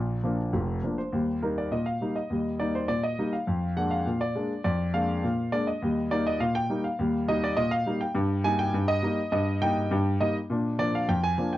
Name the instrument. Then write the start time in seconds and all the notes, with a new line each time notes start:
grand piano
Already playing: A#1 A#2 A#4 A#5
0.24 F3 A#3 D4
0.53 F1 F2
0.83 F3 A#3 D4
0.98 C5
1.12 D#2 G3
1.42 G3 A#3 D#4 A#4
1.58 D5
1.72 A#2 D#5
1.86 F5
2.01 G3 A#3 D#4
2.16 D#5
2.30 D#2 G3
2.60 G3 A#3 D#4 D5
2.75 C5
2.88 A#2 D5
3.03 D#5
3.19 G3 A#3 D#4
3.33 F5
3.47 F2
3.77 G#3 A#3 D4 F#5
3.91 F5
4.06 A#2
4.21 D5
4.35 G#3 A#3 D4
4.64 F2 D5
4.94 G#3 A#3 D4 F5
5.24 A#2
5.52 G#3 A#3 D4 D5
5.67 D#5
5.82 D#2 G3
6.11 G3 A#3 D#4 D5
6.27 D#5
6.40 A#2 F5
6.55 G5
6.70 G3 A#3 D#4
6.84 F5
6.99 D#2 G3
7.28 G3 A#3 D#4 D#5
7.44 D5
7.57 A#2 D#5
7.71 F5
7.86 G3 A#3 D#4
8.01 G5
8.15 G2
8.44 G3 A#3 D#4 G#5
8.59 G5
8.74 G2
8.88 D#5
9.03 G3 A#3 D#4
9.32 G2 D#5
9.62 G3 A#3 D#4 G5
9.91 G2
10.20 G3 A#3 D#4 D#5
10.50 A#2 D4
10.79 F3 A#3 D4 D5
10.95 F5
11.09 F2 G5
11.24 G#5
11.38 F3 A#3 D4
11.53 G5